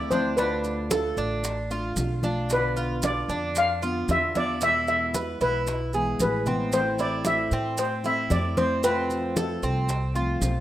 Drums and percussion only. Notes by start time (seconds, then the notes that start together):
0.11 high conga, maracas
0.38 high bongo, high conga, maracas
0.64 high bongo, high conga, maracas
0.91 high bongo, high conga, maracas
1.17 high bongo, high conga, maracas
1.44 high bongo, high conga, maracas
1.70 high bongo, high conga, maracas
1.96 high bongo, low bongo, high conga, maracas
2.23 high conga, maracas
2.50 high bongo, high conga, maracas
2.77 high bongo, high conga, maracas
3.02 high bongo, high conga, maracas
3.29 high bongo, high conga, maracas
3.55 high bongo, high conga, maracas
3.82 high bongo, high conga, maracas
4.09 high bongo, low bongo, high conga, maracas
4.35 high conga, maracas
4.61 high bongo, high conga, maracas
4.88 high bongo, high conga, maracas
5.14 high bongo, high conga, maracas
5.41 high bongo, high conga, maracas
5.67 high bongo, high conga, maracas
5.93 high bongo, high conga, maracas
6.20 high bongo, low bongo, high conga, maracas
6.46 low conga, maracas
6.72 high bongo, high conga, maracas
6.99 high bongo, high conga, maracas
7.25 high bongo, high conga, maracas
7.51 high bongo, high conga, maracas
7.78 high bongo, high conga, maracas
8.04 high bongo, high conga, maracas
8.30 high bongo, low bongo, high conga, maracas
8.57 high conga, maracas
8.83 high bongo, high conga, maracas
9.10 high bongo, high conga, maracas
9.37 high bongo, high conga, maracas
9.63 high bongo, high conga, maracas
9.89 high bongo, high conga, maracas
10.15 high bongo, high conga, maracas
10.42 high bongo, low bongo, high conga, maracas